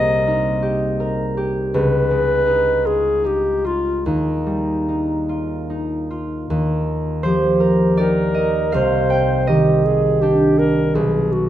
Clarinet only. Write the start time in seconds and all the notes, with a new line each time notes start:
Already playing: D#5
1.75 B4
2.86 G#4
3.26 G4
3.66 F4
4.07 D#4
7.25 G4
8.00 A#4
8.76 C5
9.48 G4
9.85 G#4
10.21 G4
10.59 A#4
10.95 G#4
11.33 F#4